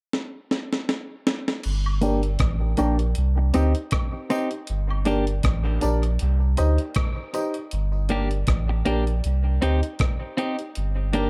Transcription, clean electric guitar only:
0, 0, Header, 1, 3, 480
1, 0, Start_track
1, 0, Key_signature, -2, "minor"
1, 0, Tempo, 759494
1, 1038, Time_signature, 4, 2, 24, 8
1, 7141, End_track
2, 0, Start_track
2, 0, Title_t, "Clean electric guitar"
2, 0, Program_c, 0, 27
2, 1273, Note_on_c, 0, 58, 85
2, 1278, Note_on_c, 0, 62, 82
2, 1282, Note_on_c, 0, 67, 108
2, 1388, Note_off_c, 0, 58, 0
2, 1391, Note_off_c, 0, 62, 0
2, 1393, Note_off_c, 0, 67, 0
2, 1755, Note_on_c, 0, 58, 78
2, 1760, Note_on_c, 0, 62, 80
2, 1763, Note_on_c, 0, 67, 94
2, 1869, Note_off_c, 0, 58, 0
2, 1872, Note_off_c, 0, 62, 0
2, 1873, Note_off_c, 0, 67, 0
2, 2238, Note_on_c, 0, 60, 84
2, 2241, Note_on_c, 0, 63, 89
2, 2244, Note_on_c, 0, 67, 91
2, 2351, Note_off_c, 0, 60, 0
2, 2352, Note_off_c, 0, 63, 0
2, 2354, Note_off_c, 0, 67, 0
2, 2718, Note_on_c, 0, 60, 96
2, 2724, Note_on_c, 0, 63, 97
2, 2727, Note_on_c, 0, 67, 96
2, 2831, Note_off_c, 0, 60, 0
2, 2834, Note_off_c, 0, 63, 0
2, 2835, Note_off_c, 0, 67, 0
2, 3198, Note_on_c, 0, 58, 76
2, 3201, Note_on_c, 0, 62, 83
2, 3205, Note_on_c, 0, 67, 92
2, 3311, Note_off_c, 0, 58, 0
2, 3312, Note_off_c, 0, 62, 0
2, 3314, Note_off_c, 0, 67, 0
2, 5120, Note_on_c, 0, 58, 80
2, 5125, Note_on_c, 0, 62, 82
2, 5128, Note_on_c, 0, 67, 87
2, 5231, Note_off_c, 0, 58, 0
2, 5234, Note_off_c, 0, 62, 0
2, 5236, Note_off_c, 0, 67, 0
2, 5596, Note_on_c, 0, 58, 76
2, 5601, Note_on_c, 0, 62, 86
2, 5605, Note_on_c, 0, 67, 92
2, 5709, Note_off_c, 0, 58, 0
2, 5712, Note_off_c, 0, 62, 0
2, 5714, Note_off_c, 0, 67, 0
2, 6078, Note_on_c, 0, 60, 90
2, 6082, Note_on_c, 0, 63, 90
2, 6086, Note_on_c, 0, 67, 105
2, 6191, Note_off_c, 0, 60, 0
2, 6192, Note_off_c, 0, 63, 0
2, 6194, Note_off_c, 0, 67, 0
2, 6556, Note_on_c, 0, 60, 96
2, 6561, Note_on_c, 0, 63, 97
2, 6564, Note_on_c, 0, 67, 105
2, 6669, Note_off_c, 0, 60, 0
2, 6672, Note_off_c, 0, 63, 0
2, 6673, Note_off_c, 0, 67, 0
2, 7037, Note_on_c, 0, 58, 77
2, 7040, Note_on_c, 0, 62, 81
2, 7045, Note_on_c, 0, 67, 82
2, 7141, Note_off_c, 0, 58, 0
2, 7141, Note_off_c, 0, 62, 0
2, 7141, Note_off_c, 0, 67, 0
2, 7141, End_track
3, 0, Start_track
3, 0, Title_t, "Muted clean electric guitar strokes"
3, 2134, Note_on_c, 9, 29, 42
3, 2197, Note_off_c, 9, 29, 0
3, 2853, Note_on_c, 9, 29, 43
3, 2916, Note_off_c, 9, 29, 0
3, 5495, Note_on_c, 9, 29, 50
3, 5558, Note_off_c, 9, 29, 0
3, 7141, End_track
0, 0, End_of_file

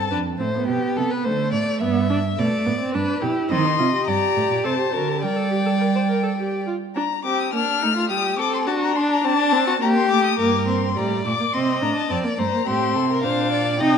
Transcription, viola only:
0, 0, Header, 1, 2, 480
1, 0, Start_track
1, 0, Key_signature, -1, "major"
1, 0, Tempo, 570342
1, 91, Time_signature, 3, 2, 24, 8
1, 2954, Key_signature, -2, "minor"
1, 11765, End_track
2, 0, Start_track
2, 0, Title_t, "Viola"
2, 0, Program_c, 0, 41
2, 97, Note_on_c, 0, 62, 65
2, 164, Note_off_c, 0, 62, 0
2, 339, Note_on_c, 0, 60, 57
2, 385, Note_off_c, 0, 60, 0
2, 455, Note_on_c, 0, 59, 73
2, 1050, Note_on_c, 0, 57, 74
2, 1063, Note_off_c, 0, 59, 0
2, 1527, Note_on_c, 0, 59, 89
2, 1539, Note_off_c, 0, 57, 0
2, 1761, Note_off_c, 0, 59, 0
2, 1766, Note_on_c, 0, 62, 72
2, 1833, Note_off_c, 0, 62, 0
2, 2002, Note_on_c, 0, 57, 84
2, 2241, Note_on_c, 0, 59, 76
2, 2253, Note_off_c, 0, 57, 0
2, 2356, Note_off_c, 0, 59, 0
2, 2361, Note_on_c, 0, 60, 79
2, 2479, Note_on_c, 0, 62, 76
2, 2492, Note_off_c, 0, 60, 0
2, 2712, Note_off_c, 0, 62, 0
2, 2717, Note_on_c, 0, 64, 75
2, 2957, Note_on_c, 0, 60, 76
2, 2970, Note_off_c, 0, 64, 0
2, 3074, Note_on_c, 0, 63, 78
2, 3087, Note_off_c, 0, 60, 0
2, 3191, Note_on_c, 0, 65, 68
2, 3203, Note_off_c, 0, 63, 0
2, 3303, Note_off_c, 0, 65, 0
2, 3308, Note_on_c, 0, 67, 77
2, 3909, Note_on_c, 0, 69, 72
2, 3922, Note_off_c, 0, 67, 0
2, 4022, Note_off_c, 0, 69, 0
2, 4027, Note_on_c, 0, 67, 62
2, 4144, Note_off_c, 0, 67, 0
2, 4149, Note_on_c, 0, 66, 58
2, 4275, Note_on_c, 0, 67, 60
2, 4288, Note_off_c, 0, 66, 0
2, 4393, Note_on_c, 0, 70, 69
2, 4405, Note_off_c, 0, 67, 0
2, 4512, Note_on_c, 0, 69, 68
2, 4524, Note_off_c, 0, 70, 0
2, 4633, Note_off_c, 0, 69, 0
2, 4638, Note_on_c, 0, 67, 60
2, 4688, Note_off_c, 0, 67, 0
2, 4759, Note_on_c, 0, 69, 68
2, 4809, Note_off_c, 0, 69, 0
2, 4885, Note_on_c, 0, 70, 70
2, 4934, Note_off_c, 0, 70, 0
2, 5008, Note_on_c, 0, 72, 66
2, 5056, Note_off_c, 0, 72, 0
2, 5128, Note_on_c, 0, 70, 67
2, 5240, Note_off_c, 0, 70, 0
2, 5245, Note_on_c, 0, 69, 60
2, 5295, Note_off_c, 0, 69, 0
2, 5369, Note_on_c, 0, 67, 60
2, 5608, Note_off_c, 0, 67, 0
2, 5612, Note_on_c, 0, 65, 61
2, 5679, Note_off_c, 0, 65, 0
2, 5857, Note_on_c, 0, 62, 76
2, 5924, Note_off_c, 0, 62, 0
2, 6097, Note_on_c, 0, 60, 60
2, 6335, Note_off_c, 0, 60, 0
2, 6340, Note_on_c, 0, 58, 64
2, 6407, Note_off_c, 0, 58, 0
2, 6579, Note_on_c, 0, 57, 67
2, 6818, Note_on_c, 0, 55, 64
2, 6831, Note_off_c, 0, 57, 0
2, 7056, Note_off_c, 0, 55, 0
2, 7060, Note_on_c, 0, 60, 66
2, 7293, Note_on_c, 0, 62, 75
2, 7306, Note_off_c, 0, 60, 0
2, 7768, Note_off_c, 0, 62, 0
2, 7773, Note_on_c, 0, 62, 86
2, 8016, Note_on_c, 0, 60, 89
2, 8029, Note_off_c, 0, 62, 0
2, 8255, Note_off_c, 0, 60, 0
2, 8260, Note_on_c, 0, 58, 76
2, 8497, Note_off_c, 0, 58, 0
2, 8504, Note_on_c, 0, 57, 70
2, 8739, Note_off_c, 0, 57, 0
2, 8745, Note_on_c, 0, 58, 75
2, 8968, Note_off_c, 0, 58, 0
2, 8986, Note_on_c, 0, 60, 64
2, 9220, Note_off_c, 0, 60, 0
2, 9224, Note_on_c, 0, 55, 70
2, 9460, Note_off_c, 0, 55, 0
2, 9467, Note_on_c, 0, 57, 62
2, 9515, Note_off_c, 0, 57, 0
2, 9588, Note_on_c, 0, 58, 64
2, 9635, Note_off_c, 0, 58, 0
2, 9708, Note_on_c, 0, 60, 74
2, 9949, Note_on_c, 0, 62, 70
2, 9962, Note_off_c, 0, 60, 0
2, 10180, Note_off_c, 0, 62, 0
2, 10185, Note_on_c, 0, 60, 66
2, 10301, Note_on_c, 0, 58, 60
2, 10314, Note_off_c, 0, 60, 0
2, 10414, Note_off_c, 0, 58, 0
2, 10419, Note_on_c, 0, 57, 58
2, 10467, Note_off_c, 0, 57, 0
2, 10540, Note_on_c, 0, 58, 72
2, 10655, Note_off_c, 0, 58, 0
2, 10660, Note_on_c, 0, 60, 68
2, 11128, Note_off_c, 0, 60, 0
2, 11141, Note_on_c, 0, 62, 69
2, 11604, Note_off_c, 0, 62, 0
2, 11611, Note_on_c, 0, 63, 94
2, 11765, Note_off_c, 0, 63, 0
2, 11765, End_track
0, 0, End_of_file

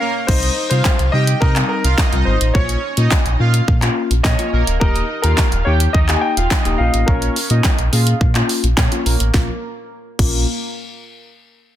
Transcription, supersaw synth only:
0, 0, Header, 1, 2, 480
1, 0, Start_track
1, 0, Tempo, 566038
1, 242, Time_signature, 4, 2, 24, 8
1, 9972, End_track
2, 0, Start_track
2, 0, Title_t, "Supersaw synth"
2, 0, Program_c, 0, 81
2, 2, Note_on_c, 0, 70, 83
2, 9, Note_on_c, 0, 58, 66
2, 87, Note_off_c, 0, 70, 0
2, 91, Note_off_c, 0, 58, 0
2, 243, Note_on_c, 0, 75, 102
2, 250, Note_on_c, 0, 63, 80
2, 412, Note_off_c, 0, 75, 0
2, 417, Note_off_c, 0, 63, 0
2, 603, Note_on_c, 0, 77, 81
2, 610, Note_on_c, 0, 65, 63
2, 772, Note_off_c, 0, 77, 0
2, 776, Note_off_c, 0, 65, 0
2, 962, Note_on_c, 0, 79, 88
2, 969, Note_on_c, 0, 67, 62
2, 1047, Note_off_c, 0, 79, 0
2, 1051, Note_off_c, 0, 67, 0
2, 1203, Note_on_c, 0, 75, 89
2, 1210, Note_on_c, 0, 63, 74
2, 1287, Note_off_c, 0, 75, 0
2, 1292, Note_off_c, 0, 63, 0
2, 1562, Note_on_c, 0, 77, 87
2, 1570, Note_on_c, 0, 65, 67
2, 1647, Note_off_c, 0, 77, 0
2, 1652, Note_off_c, 0, 65, 0
2, 1682, Note_on_c, 0, 75, 85
2, 1689, Note_on_c, 0, 63, 68
2, 2020, Note_off_c, 0, 75, 0
2, 2024, Note_off_c, 0, 63, 0
2, 2163, Note_on_c, 0, 73, 100
2, 2169, Note_on_c, 0, 61, 78
2, 2332, Note_off_c, 0, 73, 0
2, 2336, Note_off_c, 0, 61, 0
2, 2522, Note_on_c, 0, 75, 83
2, 2529, Note_on_c, 0, 63, 61
2, 2691, Note_off_c, 0, 75, 0
2, 2696, Note_off_c, 0, 63, 0
2, 2883, Note_on_c, 0, 77, 82
2, 2890, Note_on_c, 0, 65, 60
2, 2967, Note_off_c, 0, 77, 0
2, 2972, Note_off_c, 0, 65, 0
2, 3602, Note_on_c, 0, 73, 84
2, 3609, Note_on_c, 0, 61, 67
2, 3687, Note_off_c, 0, 73, 0
2, 3691, Note_off_c, 0, 61, 0
2, 3843, Note_on_c, 0, 70, 79
2, 3849, Note_on_c, 0, 58, 62
2, 3927, Note_off_c, 0, 70, 0
2, 3931, Note_off_c, 0, 58, 0
2, 4082, Note_on_c, 0, 75, 104
2, 4089, Note_on_c, 0, 63, 77
2, 4251, Note_off_c, 0, 75, 0
2, 4256, Note_off_c, 0, 63, 0
2, 4442, Note_on_c, 0, 77, 80
2, 4449, Note_on_c, 0, 65, 64
2, 4611, Note_off_c, 0, 77, 0
2, 4616, Note_off_c, 0, 65, 0
2, 4802, Note_on_c, 0, 79, 83
2, 4809, Note_on_c, 0, 67, 67
2, 4887, Note_off_c, 0, 79, 0
2, 4891, Note_off_c, 0, 67, 0
2, 5042, Note_on_c, 0, 75, 90
2, 5049, Note_on_c, 0, 63, 71
2, 5127, Note_off_c, 0, 75, 0
2, 5131, Note_off_c, 0, 63, 0
2, 5401, Note_on_c, 0, 77, 89
2, 5408, Note_on_c, 0, 65, 67
2, 5486, Note_off_c, 0, 77, 0
2, 5491, Note_off_c, 0, 65, 0
2, 5522, Note_on_c, 0, 75, 84
2, 5528, Note_on_c, 0, 63, 64
2, 5860, Note_off_c, 0, 75, 0
2, 5864, Note_off_c, 0, 63, 0
2, 6001, Note_on_c, 0, 73, 106
2, 6008, Note_on_c, 0, 61, 79
2, 6171, Note_off_c, 0, 73, 0
2, 6175, Note_off_c, 0, 61, 0
2, 6361, Note_on_c, 0, 75, 79
2, 6368, Note_on_c, 0, 63, 60
2, 6530, Note_off_c, 0, 75, 0
2, 6535, Note_off_c, 0, 63, 0
2, 6722, Note_on_c, 0, 77, 83
2, 6729, Note_on_c, 0, 65, 65
2, 6807, Note_off_c, 0, 77, 0
2, 6811, Note_off_c, 0, 65, 0
2, 7442, Note_on_c, 0, 73, 86
2, 7448, Note_on_c, 0, 61, 64
2, 7526, Note_off_c, 0, 73, 0
2, 7531, Note_off_c, 0, 61, 0
2, 7682, Note_on_c, 0, 70, 82
2, 7689, Note_on_c, 0, 58, 65
2, 7767, Note_off_c, 0, 70, 0
2, 7771, Note_off_c, 0, 58, 0
2, 7922, Note_on_c, 0, 58, 87
2, 8056, Note_off_c, 0, 58, 0
2, 8642, Note_on_c, 0, 58, 90
2, 8865, Note_off_c, 0, 58, 0
2, 9972, End_track
0, 0, End_of_file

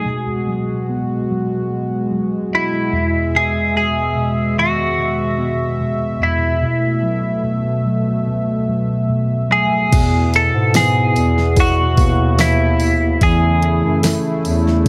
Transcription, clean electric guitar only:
0, 0, Header, 1, 2, 480
1, 0, Start_track
1, 0, Key_signature, 4, "major"
1, 0, Tempo, 821918
1, 36, Time_signature, 4, 2, 24, 8
1, 8692, End_track
2, 0, Start_track
2, 0, Title_t, "Clean electric guitar"
2, 0, Program_c, 0, 27
2, 0, Note_on_c, 0, 68, 55
2, 499, Note_off_c, 0, 68, 0
2, 1489, Note_on_c, 0, 64, 67
2, 1965, Note_on_c, 0, 68, 79
2, 1977, Note_off_c, 0, 64, 0
2, 2195, Note_off_c, 0, 68, 0
2, 2202, Note_on_c, 0, 68, 67
2, 2679, Note_off_c, 0, 68, 0
2, 2681, Note_on_c, 0, 66, 63
2, 3640, Note_on_c, 0, 64, 51
2, 3668, Note_off_c, 0, 66, 0
2, 4335, Note_off_c, 0, 64, 0
2, 5561, Note_on_c, 0, 68, 70
2, 6047, Note_off_c, 0, 68, 0
2, 6050, Note_on_c, 0, 69, 84
2, 6284, Note_off_c, 0, 69, 0
2, 6287, Note_on_c, 0, 68, 92
2, 6773, Note_off_c, 0, 68, 0
2, 6776, Note_on_c, 0, 66, 82
2, 7246, Note_on_c, 0, 64, 90
2, 7260, Note_off_c, 0, 66, 0
2, 7727, Note_on_c, 0, 68, 84
2, 7735, Note_off_c, 0, 64, 0
2, 8178, Note_off_c, 0, 68, 0
2, 8692, End_track
0, 0, End_of_file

